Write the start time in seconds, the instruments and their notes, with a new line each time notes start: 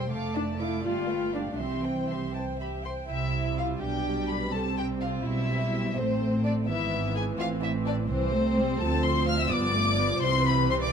Already playing: double bass section E1, violin section C5 G5 C6
0.11 double bass section F1, cello section A3, violin section A4 F5 D6
0.35 viola section D4, violin section D5 A5
0.60 viola section E4, violin section A4 F5 D6
0.84 double bass section G1, viola section F4, violin section G4 D5 F5
1.09 violin section B4 F5 G5
1.34 viola section D4, violin section G4 D5 F5
1.52 viola section D4
1.59 double bass section C2, cello section E3, viola section C4, violin section G4 E5 C6
1.84 violin section C5 G5
2.09 violin section G4 E5 C6
2.34 violin section C5 G5 A5
2.60 violin section G4 E5 B5
2.85 violin section C5 G5 C6
3.09 double bass section C2, cello section C3, viola section G3 E4, violin section E4 E5
3.58 violin section F4 F5
3.82 double bass section B1, cello section B2, viola section D4, violin section G4 G5
4.30 violin section B4 B5
4.54 double bass section C2, cello section C3, viola section C4, violin section A4 A5
4.78 violin section G4 G5
5.01 violin section F4 F5
5.25 double bass section B1, cello section B2, viola section G3, violin section E4 E5
5.97 double bass section A1, cello section A2, viola section A3 C4, violin section C4 C5
6.44 violin section D4 D5
6.67 double bass section G#1, cello section G#2, viola section E3 B3, violin section E4 E5
7.15 violin section G#4 G#5
7.38 double bass section A1, cello section A2, viola section C4, violin section F4 F5
7.62 violin section E4 E5
7.87 violin section D4 D5
8.10 double bass section C2, cello section C2, viola section E3 C4, violin section C4 C5
8.33 viola section A3
8.57 viola section G3
8.80 cello section D2, double bass section D2, viola section F3, violin section A4 A5
9.04 violin section C5 C6
9.28 violin section F5 F6
9.40 violin section E5 E6
9.51 double bass section G1, cello section G2, viola section F3 B3, violin section D5 D6
9.75 viola section A3
9.98 viola section B3
10.22 double bass section C2, cello section C3, viola section E3 C4, violin section C5 C6
10.45 violin section B4 B5
10.69 violin section C5 C6
10.82 violin section D5 D6